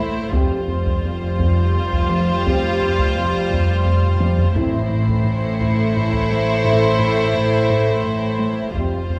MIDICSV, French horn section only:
0, 0, Header, 1, 2, 480
1, 0, Start_track
1, 0, Key_signature, 0, "minor"
1, 0, Tempo, 702576
1, 225, Time_signature, 3, 2, 24, 8
1, 6279, End_track
2, 0, Start_track
2, 0, Title_t, "French horn section"
2, 0, Program_c, 0, 60
2, 230, Note_on_c, 0, 60, 57
2, 230, Note_on_c, 0, 67, 57
2, 397, Note_off_c, 0, 67, 0
2, 398, Note_off_c, 0, 60, 0
2, 1677, Note_on_c, 0, 67, 61
2, 1681, Note_on_c, 0, 60, 65
2, 1846, Note_off_c, 0, 67, 0
2, 1848, Note_off_c, 0, 60, 0
2, 3111, Note_on_c, 0, 64, 62
2, 3114, Note_on_c, 0, 60, 59
2, 3277, Note_off_c, 0, 64, 0
2, 3279, Note_off_c, 0, 60, 0
2, 4541, Note_on_c, 0, 60, 54
2, 4541, Note_on_c, 0, 64, 55
2, 4708, Note_off_c, 0, 60, 0
2, 4708, Note_off_c, 0, 64, 0
2, 5974, Note_on_c, 0, 60, 45
2, 5979, Note_on_c, 0, 67, 41
2, 6145, Note_off_c, 0, 60, 0
2, 6148, Note_off_c, 0, 67, 0
2, 6279, End_track
0, 0, End_of_file